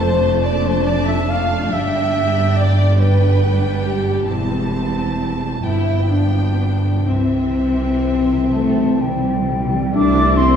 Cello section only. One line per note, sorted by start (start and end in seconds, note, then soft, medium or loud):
0.00 1.67 F2 medium
1.71 4.28 G2 medium
4.28 5.61 E2 soft
5.64 7.03 G2 soft
7.07 8.52 C3 soft
8.52 8.97 A3 soft
9.01 9.94 G3 soft
9.93 10.35 D4 medium
10.36 10.56 C4 medium